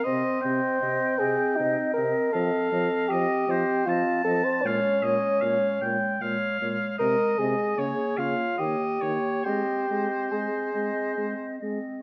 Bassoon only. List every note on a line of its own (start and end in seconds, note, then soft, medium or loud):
0.05 1.20 C5 medium
1.19 1.58 G#4 medium
1.56 1.93 D#4 medium
1.93 2.34 A#4 medium
2.33 3.10 A4 medium
3.09 3.87 G4 medium
3.85 4.24 F4 medium
4.24 4.46 A4 medium
4.44 4.63 C5 medium
4.62 6.21 C#4 medium
6.99 7.40 A#4 medium
7.38 8.20 G#4 medium
8.19 8.61 F4 soft
8.59 9.45 G4 medium
9.46 10.34 G4 medium
10.32 11.61 G#4 soft